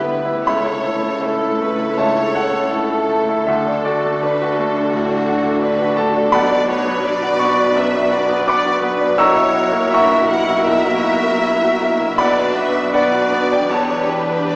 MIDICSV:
0, 0, Header, 1, 7, 480
1, 0, Start_track
1, 0, Key_signature, 2, "major"
1, 0, Tempo, 841515
1, 260, Time_signature, 4, 2, 24, 8
1, 260, Tempo, 763359
1, 1220, Tempo, 744417
1, 2660, Tempo, 712589
1, 4083, Key_signature, 2, "minor"
1, 6500, Tempo, 754717
1, 8420, Tempo, 783290
1, 9414, End_track
2, 0, Start_track
2, 0, Title_t, "Violin section"
2, 0, Program_c, 0, 48
2, 16, Note_on_c, 0, 71, 46
2, 257, Note_off_c, 0, 71, 0
2, 259, Note_on_c, 0, 73, 56
2, 731, Note_off_c, 0, 73, 0
2, 751, Note_on_c, 0, 69, 54
2, 986, Note_off_c, 0, 69, 0
2, 988, Note_on_c, 0, 71, 53
2, 1223, Note_off_c, 0, 71, 0
2, 1227, Note_on_c, 0, 73, 58
2, 1697, Note_on_c, 0, 69, 55
2, 1702, Note_off_c, 0, 73, 0
2, 2182, Note_off_c, 0, 69, 0
2, 2190, Note_on_c, 0, 69, 56
2, 2653, Note_off_c, 0, 69, 0
2, 2655, Note_on_c, 0, 71, 59
2, 2890, Note_on_c, 0, 69, 57
2, 2897, Note_off_c, 0, 71, 0
2, 3130, Note_off_c, 0, 69, 0
2, 3132, Note_on_c, 0, 66, 60
2, 3597, Note_on_c, 0, 71, 64
2, 3604, Note_off_c, 0, 66, 0
2, 3835, Note_off_c, 0, 71, 0
2, 3846, Note_on_c, 0, 69, 54
2, 4085, Note_off_c, 0, 69, 0
2, 4087, Note_on_c, 0, 74, 61
2, 4322, Note_on_c, 0, 73, 59
2, 4328, Note_off_c, 0, 74, 0
2, 4563, Note_off_c, 0, 73, 0
2, 4570, Note_on_c, 0, 74, 69
2, 5051, Note_on_c, 0, 76, 61
2, 5052, Note_off_c, 0, 74, 0
2, 5292, Note_off_c, 0, 76, 0
2, 5296, Note_on_c, 0, 74, 58
2, 5522, Note_off_c, 0, 74, 0
2, 5531, Note_on_c, 0, 74, 65
2, 5761, Note_off_c, 0, 74, 0
2, 5772, Note_on_c, 0, 71, 61
2, 6004, Note_on_c, 0, 73, 64
2, 6005, Note_off_c, 0, 71, 0
2, 6499, Note_off_c, 0, 73, 0
2, 6499, Note_on_c, 0, 76, 64
2, 6737, Note_off_c, 0, 76, 0
2, 6738, Note_on_c, 0, 78, 64
2, 6972, Note_off_c, 0, 78, 0
2, 6979, Note_on_c, 0, 76, 70
2, 7925, Note_off_c, 0, 76, 0
2, 7942, Note_on_c, 0, 74, 58
2, 8175, Note_off_c, 0, 74, 0
2, 8177, Note_on_c, 0, 76, 61
2, 8419, Note_off_c, 0, 76, 0
2, 8433, Note_on_c, 0, 74, 60
2, 8892, Note_off_c, 0, 74, 0
2, 8899, Note_on_c, 0, 73, 54
2, 9137, Note_off_c, 0, 73, 0
2, 9142, Note_on_c, 0, 71, 51
2, 9378, Note_on_c, 0, 74, 54
2, 9383, Note_off_c, 0, 71, 0
2, 9414, Note_off_c, 0, 74, 0
2, 9414, End_track
3, 0, Start_track
3, 0, Title_t, "Violin section"
3, 0, Program_c, 1, 48
3, 0, Note_on_c, 1, 71, 46
3, 237, Note_off_c, 1, 71, 0
3, 261, Note_on_c, 1, 69, 53
3, 4058, Note_off_c, 1, 69, 0
3, 4085, Note_on_c, 1, 71, 64
3, 5980, Note_off_c, 1, 71, 0
3, 6010, Note_on_c, 1, 70, 61
3, 7919, Note_off_c, 1, 70, 0
3, 7949, Note_on_c, 1, 71, 50
3, 8398, Note_off_c, 1, 71, 0
3, 8421, Note_on_c, 1, 71, 46
3, 8886, Note_off_c, 1, 71, 0
3, 8896, Note_on_c, 1, 71, 55
3, 9414, Note_off_c, 1, 71, 0
3, 9414, End_track
4, 0, Start_track
4, 0, Title_t, "Grand piano"
4, 0, Program_c, 2, 0
4, 0, Control_c, 2, 64, 127
4, 0, Note_on_c, 2, 38, 43
4, 0, Note_on_c, 2, 59, 42
4, 0, Note_on_c, 2, 64, 44
4, 0, Note_on_c, 2, 67, 37
4, 0, Note_on_c, 2, 71, 44
4, 0, Note_on_c, 2, 76, 59
4, 24, Note_off_c, 2, 59, 0
4, 24, Note_on_c, 2, 59, 42
4, 96, Note_off_c, 2, 67, 0
4, 142, Note_off_c, 2, 64, 0
4, 142, Note_on_c, 2, 64, 46
4, 215, Note_off_c, 2, 59, 0
4, 235, Note_off_c, 2, 38, 0
4, 238, Note_off_c, 2, 76, 0
4, 241, Note_off_c, 2, 71, 0
4, 259, Note_off_c, 2, 64, 0
4, 269, Note_on_c, 2, 83, 69
4, 270, Control_c, 2, 64, 0
4, 270, Note_on_c, 2, 37, 50
4, 281, Note_on_c, 2, 76, 55
4, 361, Control_c, 2, 64, 127
4, 389, Note_on_c, 2, 64, 39
4, 503, Note_on_c, 2, 69, 45
4, 577, Note_off_c, 2, 64, 0
4, 619, Note_on_c, 2, 57, 38
4, 693, Note_off_c, 2, 69, 0
4, 733, Note_on_c, 2, 64, 42
4, 812, Note_off_c, 2, 57, 0
4, 855, Note_on_c, 2, 69, 42
4, 929, Note_off_c, 2, 64, 0
4, 981, Note_on_c, 2, 57, 50
4, 1050, Note_off_c, 2, 69, 0
4, 1098, Note_on_c, 2, 64, 41
4, 1173, Note_off_c, 2, 57, 0
4, 1199, Note_off_c, 2, 83, 0
4, 1200, Note_off_c, 2, 37, 0
4, 1206, Note_off_c, 2, 76, 0
4, 1215, Note_on_c, 2, 37, 47
4, 1218, Note_on_c, 2, 81, 63
4, 1224, Note_on_c, 2, 73, 49
4, 1230, Note_on_c, 2, 76, 48
4, 1290, Note_off_c, 2, 64, 0
4, 1339, Note_on_c, 2, 57, 45
4, 1442, Note_off_c, 2, 81, 0
4, 1445, Note_off_c, 2, 73, 0
4, 1448, Note_off_c, 2, 76, 0
4, 1454, Note_on_c, 2, 69, 45
4, 1457, Note_on_c, 2, 78, 61
4, 1463, Note_on_c, 2, 73, 51
4, 1531, Note_off_c, 2, 57, 0
4, 1575, Note_on_c, 2, 57, 46
4, 1648, Note_off_c, 2, 69, 0
4, 1692, Note_on_c, 2, 64, 47
4, 1768, Note_off_c, 2, 57, 0
4, 1813, Note_on_c, 2, 69, 49
4, 1887, Note_off_c, 2, 64, 0
4, 1935, Note_on_c, 2, 57, 50
4, 2009, Note_off_c, 2, 69, 0
4, 2062, Note_on_c, 2, 64, 51
4, 2132, Note_off_c, 2, 57, 0
4, 2155, Note_off_c, 2, 37, 0
4, 2155, Note_off_c, 2, 78, 0
4, 2158, Note_off_c, 2, 73, 0
4, 2178, Note_on_c, 2, 76, 58
4, 2184, Note_off_c, 2, 64, 0
4, 2186, Note_on_c, 2, 38, 57
4, 2196, Control_c, 2, 64, 0
4, 2309, Note_on_c, 2, 62, 47
4, 2312, Control_c, 2, 64, 127
4, 2405, Note_off_c, 2, 76, 0
4, 2423, Note_on_c, 2, 74, 61
4, 2430, Note_on_c, 2, 66, 52
4, 2433, Note_on_c, 2, 69, 42
4, 2497, Note_off_c, 2, 62, 0
4, 2550, Note_on_c, 2, 57, 45
4, 2615, Note_off_c, 2, 66, 0
4, 2672, Note_on_c, 2, 62, 48
4, 2735, Note_off_c, 2, 57, 0
4, 2795, Note_on_c, 2, 66, 53
4, 2857, Note_off_c, 2, 62, 0
4, 2914, Note_on_c, 2, 57, 51
4, 2978, Note_off_c, 2, 66, 0
4, 3028, Note_on_c, 2, 62, 48
4, 3096, Note_off_c, 2, 57, 0
4, 3110, Note_off_c, 2, 38, 0
4, 3144, Note_on_c, 2, 45, 52
4, 3210, Note_off_c, 2, 62, 0
4, 3250, Note_on_c, 2, 62, 52
4, 3327, Note_off_c, 2, 45, 0
4, 3341, Note_off_c, 2, 74, 0
4, 3346, Note_off_c, 2, 69, 0
4, 3374, Note_on_c, 2, 66, 50
4, 3438, Note_off_c, 2, 62, 0
4, 3493, Note_on_c, 2, 57, 50
4, 3560, Note_off_c, 2, 66, 0
4, 3611, Note_on_c, 2, 62, 52
4, 3680, Note_off_c, 2, 57, 0
4, 3729, Note_on_c, 2, 66, 51
4, 3799, Note_off_c, 2, 62, 0
4, 3841, Note_on_c, 2, 81, 71
4, 3850, Note_on_c, 2, 57, 49
4, 3918, Note_off_c, 2, 66, 0
4, 3969, Note_on_c, 2, 62, 52
4, 4039, Note_off_c, 2, 57, 0
4, 4065, Note_off_c, 2, 81, 0
4, 4079, Note_on_c, 2, 83, 81
4, 4083, Note_on_c, 2, 35, 60
4, 4086, Note_off_c, 2, 62, 0
4, 4087, Note_on_c, 2, 74, 56
4, 4087, Note_on_c, 2, 78, 59
4, 4095, Control_c, 2, 64, 0
4, 4194, Control_c, 2, 64, 127
4, 4204, Note_on_c, 2, 62, 57
4, 4318, Note_on_c, 2, 66, 53
4, 4400, Note_off_c, 2, 62, 0
4, 4437, Note_on_c, 2, 59, 46
4, 4517, Note_off_c, 2, 66, 0
4, 4563, Note_on_c, 2, 62, 58
4, 4636, Note_off_c, 2, 59, 0
4, 4687, Note_on_c, 2, 66, 51
4, 4759, Note_off_c, 2, 62, 0
4, 4781, Note_off_c, 2, 83, 0
4, 4785, Note_off_c, 2, 74, 0
4, 4785, Note_off_c, 2, 78, 0
4, 4800, Note_on_c, 2, 85, 70
4, 4804, Note_on_c, 2, 59, 55
4, 4881, Note_off_c, 2, 66, 0
4, 4930, Note_on_c, 2, 62, 52
4, 5000, Note_off_c, 2, 59, 0
4, 5024, Note_off_c, 2, 35, 0
4, 5043, Note_on_c, 2, 42, 52
4, 5124, Note_off_c, 2, 62, 0
4, 5175, Note_on_c, 2, 62, 55
4, 5240, Note_off_c, 2, 42, 0
4, 5287, Note_on_c, 2, 66, 49
4, 5365, Note_off_c, 2, 62, 0
4, 5404, Note_on_c, 2, 59, 51
4, 5479, Note_off_c, 2, 66, 0
4, 5497, Note_off_c, 2, 85, 0
4, 5525, Note_on_c, 2, 62, 53
4, 5531, Note_on_c, 2, 86, 75
4, 5540, Note_on_c, 2, 78, 62
4, 5540, Note_on_c, 2, 83, 53
4, 5596, Note_off_c, 2, 59, 0
4, 5650, Note_on_c, 2, 66, 45
4, 5716, Note_off_c, 2, 62, 0
4, 5762, Note_on_c, 2, 59, 51
4, 5839, Note_off_c, 2, 66, 0
4, 5878, Note_on_c, 2, 62, 56
4, 5956, Note_off_c, 2, 59, 0
4, 5981, Note_off_c, 2, 86, 0
4, 5985, Note_off_c, 2, 78, 0
4, 5985, Note_off_c, 2, 83, 0
4, 6003, Note_off_c, 2, 62, 0
4, 6004, Note_on_c, 2, 35, 66
4, 6005, Note_on_c, 2, 88, 82
4, 6010, Note_on_c, 2, 85, 61
4, 6017, Note_on_c, 2, 82, 63
4, 6018, Control_c, 2, 64, 0
4, 6122, Note_on_c, 2, 64, 48
4, 6127, Control_c, 2, 64, 127
4, 6243, Note_on_c, 2, 66, 51
4, 6323, Note_off_c, 2, 64, 0
4, 6368, Note_on_c, 2, 58, 47
4, 6446, Note_off_c, 2, 66, 0
4, 6473, Note_off_c, 2, 88, 0
4, 6475, Note_off_c, 2, 85, 0
4, 6479, Note_off_c, 2, 82, 0
4, 6492, Note_on_c, 2, 64, 51
4, 6514, Note_on_c, 2, 85, 74
4, 6518, Note_on_c, 2, 82, 56
4, 6519, Note_on_c, 2, 78, 55
4, 6567, Note_off_c, 2, 58, 0
4, 6614, Note_on_c, 2, 66, 53
4, 6685, Note_off_c, 2, 64, 0
4, 6732, Note_on_c, 2, 58, 52
4, 6806, Note_off_c, 2, 66, 0
4, 6851, Note_on_c, 2, 64, 49
4, 6925, Note_off_c, 2, 58, 0
4, 6950, Note_off_c, 2, 35, 0
4, 6976, Note_on_c, 2, 35, 51
4, 7046, Note_off_c, 2, 64, 0
4, 7097, Note_on_c, 2, 58, 50
4, 7216, Note_on_c, 2, 66, 53
4, 7291, Note_off_c, 2, 58, 0
4, 7340, Note_on_c, 2, 58, 47
4, 7412, Note_off_c, 2, 66, 0
4, 7460, Note_on_c, 2, 64, 51
4, 7535, Note_off_c, 2, 58, 0
4, 7586, Note_on_c, 2, 66, 47
4, 7655, Note_off_c, 2, 64, 0
4, 7685, Note_off_c, 2, 85, 0
4, 7687, Note_off_c, 2, 78, 0
4, 7687, Note_off_c, 2, 82, 0
4, 7710, Note_on_c, 2, 58, 48
4, 7777, Note_off_c, 2, 66, 0
4, 7829, Note_on_c, 2, 64, 50
4, 7898, Note_off_c, 2, 58, 0
4, 7917, Note_off_c, 2, 35, 0
4, 7941, Note_on_c, 2, 83, 78
4, 7946, Note_off_c, 2, 64, 0
4, 7948, Note_on_c, 2, 35, 58
4, 7949, Note_on_c, 2, 74, 57
4, 7951, Note_on_c, 2, 78, 59
4, 7954, Control_c, 2, 64, 0
4, 8050, Control_c, 2, 64, 127
4, 8068, Note_on_c, 2, 62, 48
4, 8183, Note_on_c, 2, 66, 55
4, 8255, Note_off_c, 2, 62, 0
4, 8298, Note_on_c, 2, 59, 43
4, 8373, Note_off_c, 2, 66, 0
4, 8394, Note_off_c, 2, 83, 0
4, 8398, Note_off_c, 2, 74, 0
4, 8399, Note_off_c, 2, 78, 0
4, 8419, Note_on_c, 2, 78, 67
4, 8420, Note_on_c, 2, 62, 47
4, 8426, Note_on_c, 2, 74, 51
4, 8430, Note_on_c, 2, 71, 50
4, 8490, Note_off_c, 2, 59, 0
4, 8532, Note_on_c, 2, 66, 48
4, 8610, Note_off_c, 2, 62, 0
4, 8657, Note_on_c, 2, 59, 52
4, 8726, Note_off_c, 2, 66, 0
4, 8751, Note_off_c, 2, 78, 0
4, 8755, Note_off_c, 2, 74, 0
4, 8757, Note_off_c, 2, 71, 0
4, 8771, Note_on_c, 2, 62, 44
4, 8784, Note_on_c, 2, 79, 55
4, 8848, Note_off_c, 2, 59, 0
4, 8874, Note_off_c, 2, 35, 0
4, 8891, Note_off_c, 2, 79, 0
4, 8892, Note_off_c, 2, 62, 0
4, 8892, Note_on_c, 2, 81, 66
4, 8894, Note_on_c, 2, 40, 51
4, 8907, Control_c, 2, 64, 0
4, 9015, Control_c, 2, 64, 127
4, 9016, Note_on_c, 2, 62, 48
4, 9129, Note_on_c, 2, 67, 45
4, 9208, Note_off_c, 2, 62, 0
4, 9252, Note_on_c, 2, 59, 40
4, 9327, Note_off_c, 2, 67, 0
4, 9381, Note_on_c, 2, 62, 39
4, 9414, Note_off_c, 2, 40, 0
4, 9414, Note_off_c, 2, 59, 0
4, 9414, Note_off_c, 2, 62, 0
4, 9414, Note_off_c, 2, 81, 0
4, 9414, End_track
5, 0, Start_track
5, 0, Title_t, "Viola section"
5, 0, Program_c, 3, 48
5, 0, Note_on_c, 3, 55, 41
5, 0, Note_on_c, 3, 64, 43
5, 239, Note_off_c, 3, 55, 0
5, 263, Note_on_c, 3, 57, 52
5, 2159, Note_off_c, 3, 57, 0
5, 2159, Note_off_c, 3, 64, 0
5, 2181, Note_on_c, 3, 66, 50
5, 2182, Note_on_c, 3, 62, 57
5, 5979, Note_off_c, 3, 62, 0
5, 5979, Note_off_c, 3, 66, 0
5, 6007, Note_on_c, 3, 64, 66
5, 6007, Note_on_c, 3, 66, 64
5, 7917, Note_off_c, 3, 64, 0
5, 7917, Note_off_c, 3, 66, 0
5, 7953, Note_on_c, 3, 62, 58
5, 7953, Note_on_c, 3, 66, 60
5, 8400, Note_off_c, 3, 62, 0
5, 8400, Note_off_c, 3, 66, 0
5, 8422, Note_on_c, 3, 62, 56
5, 8423, Note_on_c, 3, 66, 46
5, 8887, Note_off_c, 3, 62, 0
5, 8887, Note_off_c, 3, 66, 0
5, 8900, Note_on_c, 3, 62, 56
5, 8900, Note_on_c, 3, 67, 51
5, 9414, Note_off_c, 3, 62, 0
5, 9414, Note_off_c, 3, 67, 0
5, 9414, End_track
6, 0, Start_track
6, 0, Title_t, "Cello section"
6, 0, Program_c, 4, 48
6, 0, Note_on_c, 4, 50, 46
6, 237, Note_off_c, 4, 50, 0
6, 255, Note_on_c, 4, 49, 48
6, 2154, Note_off_c, 4, 49, 0
6, 2179, Note_on_c, 4, 50, 56
6, 4082, Note_off_c, 4, 50, 0
6, 4083, Note_on_c, 4, 47, 57
6, 7917, Note_off_c, 4, 47, 0
6, 7944, Note_on_c, 4, 47, 59
6, 8872, Note_off_c, 4, 47, 0
6, 8899, Note_on_c, 4, 40, 52
6, 9414, Note_off_c, 4, 40, 0
6, 9414, End_track
7, 0, Start_track
7, 0, Title_t, "Double bass section"
7, 0, Program_c, 5, 48
7, 0, Note_on_c, 5, 38, 43
7, 236, Note_off_c, 5, 38, 0
7, 260, Note_on_c, 5, 37, 52
7, 2157, Note_off_c, 5, 37, 0
7, 2186, Note_on_c, 5, 38, 54
7, 4085, Note_off_c, 5, 38, 0
7, 4086, Note_on_c, 5, 35, 59
7, 7918, Note_off_c, 5, 35, 0
7, 7946, Note_on_c, 5, 35, 58
7, 8872, Note_off_c, 5, 35, 0
7, 8896, Note_on_c, 5, 28, 56
7, 9414, Note_off_c, 5, 28, 0
7, 9414, End_track
0, 0, End_of_file